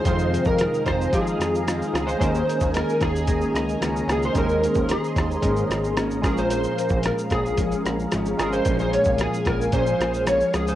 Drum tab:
HH |x-x-x-x-x-x-x-x-|x-x-x-x-x-x-x-x-|x-x-x-x-x-x-x-x-|x-x-x-x-x-x-x-x-|
SH |xxxxxxxxxxxxxxxx|xxxxxxxxxxxxxxxx|xxxxxxxxxxxxxxxx|xxxxxxxxxxxxxxxx|
SD |----r-r---r-r-r-|----r-r---r-r-r-|----r-r---r-r-r-|----r-r---r-r-r-|
BD |o--o--o-o-------|o--o--o-o-------|o--o--o-o-----o-|---o--o-o-------|

HH |x-x-x-x-x-x-x-x-|
SH |xxxxxxxxxxxxxxxx|
SD |----r-r---r-r-r-|
BD |o--o--o-o-------|